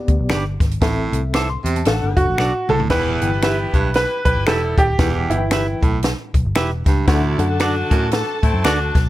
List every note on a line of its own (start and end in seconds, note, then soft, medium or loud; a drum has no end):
0.00 0.40 B3 medium
0.00 0.37 G4 medium
0.00 0.37 D5 medium
0.08 0.17 D2 medium
0.08 kick medium
0.08 closed hi-hat medium
0.19 0.32 B1 medium
0.29 0.56 G1 medium
0.29 0.43 D4 medium
0.29 0.43 G4 medium
0.29 0.43 B4 medium
0.29 0.44 D5 medium
0.29 finger snap loud
0.29 snare loud
0.29 closed hi-hat medium
0.60 0.78 G#1 medium
0.60 kick loud
0.60 snare soft
0.60 closed hi-hat medium
0.71 closed hi-hat soft
0.81 1.08 A1 medium
0.81 1.21 A2 medium
0.81 1.61 A2 medium
0.81 0.89 B3 medium
0.81 1.41 A4 medium
0.81 1.42 E5 medium
0.81 kick loud
0.81 snare loud
0.81 closed hi-hat medium
0.88 1.44 C4 medium
1.13 1.56 C2 medium
1.13 closed hi-hat medium
1.34 1.47 E4 medium
1.34 1.48 A4 medium
1.34 1.48 C5 medium
1.34 1.48 E5 medium
1.34 1.49 D6 medium
1.34 finger snap medium
1.34 snare loud
1.34 closed hi-hat medium
1.50 1.74 C6 medium
1.64 1.82 E2 medium
1.64 1.82 C3 medium
1.64 closed hi-hat medium
1.76 2.01 A5 medium
1.76 closed hi-hat soft
1.85 1.99 A1 loud
1.85 2.66 A2 medium
1.85 2.46 D4 medium
1.85 2.26 D4 medium
1.85 2.26 F#4 medium
1.85 2.26 A4 loud
1.85 2.46 A4 medium
1.85 1.94 F5 medium
1.85 snare loud
1.85 closed hi-hat medium
1.93 2.49 F#5 medium
2.02 2.15 G1 medium
2.17 2.26 F#1 medium
2.17 2.71 F#4 medium
2.17 kick medium
2.17 closed hi-hat medium
2.29 2.37 A1 medium
2.38 2.51 B1 medium
2.38 2.52 D4 medium
2.38 2.52 F#4 medium
2.38 2.52 A4 medium
2.38 2.52 D5 medium
2.38 finger snap loud
2.38 snare medium
2.69 2.79 C2 medium
2.69 2.86 A2 medium
2.69 2.75 A4 loud
2.69 mid tom medium
2.80 2.89 D2 medium
2.80 floor tom medium
2.90 3.16 E1 loud
2.90 3.29 E2 medium
2.90 3.70 E3 medium
2.90 3.29 G3 medium
2.90 3.29 B3 medium
2.90 3.29 E4 loud
2.90 3.08 E4 medium
2.90 3.94 B4 loud
2.90 3.08 B4 medium
2.90 3.09 G5 medium
2.90 kick loud
2.90 snare loud
2.90 crash medium
3.21 3.65 G1 loud
3.21 3.79 E4 medium
3.21 3.79 B4 medium
3.21 3.79 G5 medium
3.21 closed hi-hat medium
3.32 3.41 B3 medium
3.32 3.41 E4 medium
3.32 3.41 G4 medium
3.42 3.92 B3 loud
3.42 3.57 E4 medium
3.42 3.92 E4 loud
3.42 3.92 G4 loud
3.42 3.57 G4 medium
3.42 3.57 B4 medium
3.42 3.57 E5 medium
3.42 finger snap medium
3.42 snare loud
3.42 closed hi-hat medium
3.73 4.04 B1 medium
3.73 3.90 G2 medium
3.73 kick medium
3.73 closed hi-hat medium
3.94 4.20 E4 medium
3.94 4.20 G4 medium
3.94 4.20 B4 medium
3.94 4.24 B4 medium
3.94 snare loud
3.94 closed hi-hat medium
4.25 4.35 B1 medium
4.25 4.43 E4 loud
4.25 4.42 G4 loud
4.25 4.47 B4 medium
4.25 4.43 B4 loud
4.25 kick medium
4.25 closed hi-hat medium
4.37 4.46 G1 medium
4.46 4.73 E1 medium
4.46 4.86 G3 medium
4.46 4.86 B3 medium
4.46 4.86 E4 loud
4.46 4.61 E4 medium
4.46 4.61 G4 medium
4.46 4.79 A4 medium
4.46 4.61 B4 medium
4.46 4.61 E5 medium
4.46 finger snap loud
4.46 snare loud
4.46 closed hi-hat medium
4.78 4.96 D#1 medium
4.78 5.32 G4 loud
4.78 kick loud
4.78 closed hi-hat medium
4.98 5.25 E1 loud
4.98 5.38 E2 medium
4.98 5.78 E3 medium
4.98 5.16 E4 medium
4.98 5.16 B4 medium
4.98 5.17 G5 medium
4.98 kick loud
4.98 snare loud
4.98 closed hi-hat loud
5.30 5.74 G1 medium
5.30 5.79 E4 medium
5.30 5.88 E4 medium
5.30 5.88 B4 medium
5.30 5.36 F#5 medium
5.30 closed hi-hat medium
5.38 5.91 G5 medium
5.51 5.65 E4 medium
5.51 5.66 G4 medium
5.51 5.66 B4 medium
5.51 5.66 E5 medium
5.51 finger snap medium
5.51 snare loud
5.51 closed hi-hat medium
5.82 6.13 B1 medium
5.82 5.99 A2 medium
5.82 kick medium
5.82 closed hi-hat medium
6.03 snare loud
6.03 closed hi-hat medium
6.34 6.43 B1 medium
6.34 kick medium
6.34 closed hi-hat medium
6.45 6.54 G1 medium
6.55 6.82 E1 medium
6.55 6.69 E4 medium
6.55 6.70 G4 medium
6.55 6.70 B4 medium
6.55 6.70 E5 medium
6.55 finger snap loud
6.55 snare loud
6.55 closed hi-hat medium
6.86 7.04 C#2 medium
6.86 7.04 G2 medium
6.86 kick loud
6.86 snare soft
6.86 closed hi-hat medium
7.07 7.47 D2 medium
7.07 7.34 D2 loud
7.07 7.87 D3 medium
7.07 7.46 F#3 loud
7.07 7.46 A3 loud
7.07 7.25 D4 medium
7.07 7.46 E4 loud
7.07 7.25 A4 medium
7.07 9.09 A4 medium
7.07 7.25 F#5 loud
7.07 9.09 A5 medium
7.07 kick loud
7.07 snare loud
7.07 closed hi-hat loud
7.39 7.82 F#2 medium
7.39 7.96 D4 medium
7.39 7.96 A4 medium
7.39 7.97 F#5 medium
7.39 closed hi-hat medium
7.50 7.58 A3 medium
7.50 7.58 D4 medium
7.50 7.58 F#4 medium
7.60 8.09 A3 loud
7.60 8.09 D4 loud
7.60 7.74 D4 medium
7.60 8.09 F#4 loud
7.60 7.74 F#4 medium
7.60 7.74 A4 medium
7.60 7.74 D5 loud
7.60 finger snap medium
7.60 snare loud
7.60 closed hi-hat loud
7.91 8.08 F#2 medium
7.91 8.22 A2 medium
7.91 kick loud
7.91 closed hi-hat medium
8.11 8.37 D4 medium
8.11 8.37 F#4 medium
8.11 8.37 A4 loud
8.11 snare loud
8.11 closed hi-hat medium
8.43 8.52 A2 loud
8.43 8.60 A3 loud
8.43 8.60 C4 loud
8.43 8.60 E4 loud
8.43 kick medium
8.43 closed hi-hat medium
8.54 8.64 F#2 loud
8.64 8.90 D2 medium
8.64 9.04 A3 medium
8.64 8.78 D4 medium
8.64 9.03 D4 loud
8.64 8.78 F#4 medium
8.64 9.04 F#4 loud
8.64 8.78 A4 medium
8.64 8.79 D5 medium
8.64 finger snap medium
8.64 snare loud
8.64 closed hi-hat medium
8.95 9.09 B1 medium
8.95 kick medium
8.95 snare soft
8.95 closed hi-hat medium